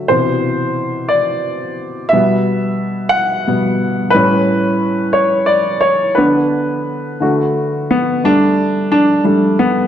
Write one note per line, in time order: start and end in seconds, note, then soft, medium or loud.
0.00 0.11 D3 soft
0.00 0.12 F#3 soft
0.00 0.11 A3 medium
0.00 0.11 E5 medium
0.08 2.10 B2 soft
0.08 2.09 C3 soft
0.08 2.09 E3 soft
0.08 1.14 C5 medium
1.09 2.08 D5 medium
2.09 3.46 B2 soft
2.09 3.46 G3 soft
2.09 3.08 E5 medium
2.13 3.46 B3 medium
3.09 4.16 F#5 medium
3.47 3.78 B2 soft
3.47 3.78 G3 soft
3.47 3.79 B3 soft
4.10 4.60 A2 soft
4.10 4.60 G3 soft
4.10 5.18 B4 medium
4.16 4.61 C#4 medium
5.13 5.50 C#5 medium
5.46 5.80 D5 medium
5.81 6.15 C#5 medium
6.15 7.17 D3 medium
6.15 7.17 B3 soft
6.15 7.17 D4 medium
6.15 7.84 B4 medium
7.20 8.19 D3 medium
7.20 8.20 A3 soft
7.20 8.20 F#4 medium
7.91 8.22 B3 medium
8.24 9.22 G3 medium
8.24 9.22 A3 soft
8.24 8.88 D4 loud
8.92 9.24 D4 loud
9.24 9.55 G3 soft
9.24 9.56 A3 soft
9.24 9.56 D4 medium
9.59 9.87 B3 medium